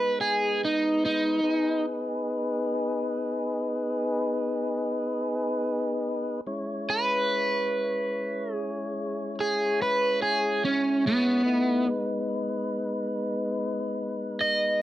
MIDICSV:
0, 0, Header, 1, 3, 480
1, 0, Start_track
1, 0, Key_signature, 5, "minor"
1, 0, Tempo, 834492
1, 827, Time_signature, 12, 3, 24, 8
1, 8524, End_track
2, 0, Start_track
2, 0, Title_t, "Overdriven electric guitar"
2, 0, Program_c, 0, 29
2, 0, Note_on_c, 0, 71, 65
2, 106, Note_off_c, 0, 71, 0
2, 119, Note_on_c, 0, 68, 73
2, 346, Note_off_c, 0, 68, 0
2, 370, Note_on_c, 0, 63, 60
2, 591, Note_off_c, 0, 63, 0
2, 604, Note_on_c, 0, 63, 74
2, 1061, Note_off_c, 0, 63, 0
2, 3968, Note_on_c, 0, 71, 89
2, 4917, Note_off_c, 0, 71, 0
2, 4917, Note_on_c, 0, 68, 89
2, 5376, Note_off_c, 0, 68, 0
2, 5411, Note_on_c, 0, 68, 68
2, 5633, Note_off_c, 0, 68, 0
2, 5650, Note_on_c, 0, 71, 76
2, 5873, Note_off_c, 0, 71, 0
2, 5881, Note_on_c, 0, 68, 79
2, 6108, Note_off_c, 0, 68, 0
2, 6125, Note_on_c, 0, 61, 74
2, 6350, Note_off_c, 0, 61, 0
2, 6367, Note_on_c, 0, 59, 92
2, 6824, Note_off_c, 0, 59, 0
2, 8289, Note_on_c, 0, 75, 74
2, 8524, Note_off_c, 0, 75, 0
2, 8524, End_track
3, 0, Start_track
3, 0, Title_t, "Tonewheel organ"
3, 0, Program_c, 1, 16
3, 0, Note_on_c, 1, 56, 62
3, 0, Note_on_c, 1, 59, 63
3, 0, Note_on_c, 1, 63, 62
3, 0, Note_on_c, 1, 71, 58
3, 806, Note_off_c, 1, 63, 0
3, 806, Note_off_c, 1, 71, 0
3, 807, Note_off_c, 1, 59, 0
3, 808, Note_off_c, 1, 56, 0
3, 823, Note_on_c, 1, 59, 59
3, 825, Note_on_c, 1, 68, 65
3, 826, Note_on_c, 1, 63, 62
3, 828, Note_on_c, 1, 71, 62
3, 3684, Note_off_c, 1, 59, 0
3, 3685, Note_off_c, 1, 63, 0
3, 3685, Note_off_c, 1, 68, 0
3, 3686, Note_off_c, 1, 71, 0
3, 3719, Note_on_c, 1, 61, 67
3, 3720, Note_on_c, 1, 56, 67
3, 3723, Note_on_c, 1, 64, 66
3, 3723, Note_on_c, 1, 73, 65
3, 6572, Note_off_c, 1, 56, 0
3, 6572, Note_off_c, 1, 61, 0
3, 6573, Note_off_c, 1, 73, 0
3, 6574, Note_off_c, 1, 64, 0
3, 6582, Note_on_c, 1, 57, 63
3, 6585, Note_on_c, 1, 71, 60
3, 6586, Note_on_c, 1, 64, 61
3, 6587, Note_on_c, 1, 63, 57
3, 6824, Note_off_c, 1, 71, 0
3, 6825, Note_off_c, 1, 63, 0
3, 6826, Note_off_c, 1, 57, 0
3, 6828, Note_off_c, 1, 64, 0
3, 6829, Note_on_c, 1, 59, 55
3, 6831, Note_on_c, 1, 71, 61
3, 6832, Note_on_c, 1, 63, 59
3, 6833, Note_on_c, 1, 56, 56
3, 8524, Note_off_c, 1, 56, 0
3, 8524, Note_off_c, 1, 59, 0
3, 8524, Note_off_c, 1, 63, 0
3, 8524, Note_off_c, 1, 71, 0
3, 8524, End_track
0, 0, End_of_file